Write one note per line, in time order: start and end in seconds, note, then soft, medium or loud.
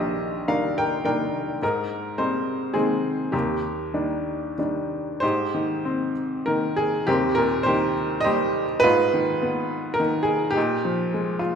0.00 1.58 A#1 soft
0.00 1.64 D#2 soft
0.00 1.64 D3 soft
0.00 0.48 D#3 soft
0.00 0.48 G3 soft
0.00 1.64 A#3 soft
0.00 0.48 D4 soft
0.00 1.64 G4 soft
0.00 1.64 G#4 soft
0.00 0.48 A#4 soft
0.00 1.64 D5 soft
0.00 1.64 D#5 medium
0.00 0.48 F5 medium
0.48 1.03 D#3 soft
0.48 1.04 G3 soft
0.48 1.04 D4 soft
0.48 0.75 A#4 soft
0.48 0.78 F5 medium
0.78 1.03 A#4 medium
0.78 1.04 G5 medium
1.05 1.60 D#3 soft
1.05 1.60 G3 soft
1.05 1.60 D4 soft
1.05 1.58 A#4 soft
1.05 1.64 G5 medium
1.62 3.30 G#2 soft
1.62 2.15 D#4 soft
1.62 2.21 A#4 medium
2.18 2.73 G3 soft
2.18 2.73 G#3 soft
2.18 2.72 C4 soft
2.18 2.71 D#4 soft
2.18 2.77 C5 medium
2.73 3.32 D#3 soft
2.73 3.33 G#3 soft
2.73 3.29 C4 soft
2.73 3.35 G#4 medium
3.32 5.19 D#2 soft
3.32 4.54 A#3 soft
3.32 4.54 G4 medium
3.94 4.57 D#3 soft
3.94 4.57 G3 soft
3.94 4.57 D4 soft
4.58 5.21 D#3 soft
4.58 5.21 G3 soft
4.58 5.21 D4 soft
5.20 7.04 G#2 soft
5.20 6.12 D#4 soft
5.20 6.12 G4 medium
5.20 6.11 C5 medium
5.54 6.46 D#3 soft
5.85 7.04 C4 soft
6.46 7.06 D#3 soft
6.46 6.75 A#4 medium
6.76 7.05 G#4 medium
7.07 8.80 D#2 medium
7.07 7.94 A#3 medium
7.07 7.94 C4 medium
7.07 7.38 G4 medium
7.35 8.52 A#2 soft
7.35 7.67 A#4 medium
7.63 8.23 G4 medium
7.63 8.23 C5 medium
7.68 8.81 D#3 soft
8.21 8.79 G4 medium
8.21 8.79 C5 medium
8.21 8.64 D#5 medium
8.26 8.82 G3 medium
8.80 9.94 D#4 medium
8.80 10.00 B4 loud
8.84 10.52 G#2 medium
8.84 9.94 F4 medium
9.14 9.98 D#3 medium
9.42 10.53 B3 soft
9.94 10.23 A#4 medium
10.00 10.55 D#3 medium
10.23 10.52 G#4 medium
10.51 11.37 G4 medium
10.55 11.55 A#2 medium
10.55 11.39 D#4 medium
10.85 11.55 F3 soft
11.14 11.55 G#3 soft
11.39 11.55 F4 medium